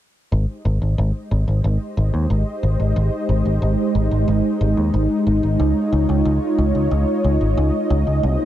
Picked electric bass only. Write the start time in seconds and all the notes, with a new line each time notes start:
0.32 G#1
0.65 G#1
0.82 G#1
0.98 G#1
1.31 G#1
1.48 G#1
1.64 G#1
1.97 G#1
2.14 D#2
2.30 G#1
2.63 G#1
2.80 G#1
2.96 G#1
3.29 G#1
3.45 G#1
3.62 G#1
3.95 G#1
4.11 G#1
4.28 G#1
4.61 G#1
4.77 D#2
4.94 G#1
5.27 G#1
5.43 G#1
5.60 C#2
5.92 C#2
6.09 C#2
6.25 C#2
6.58 C#2
6.75 C#2
6.91 C#2
7.24 C#2
7.41 G#1
7.57 C#2
7.90 C#2
8.07 C#2
8.23 C2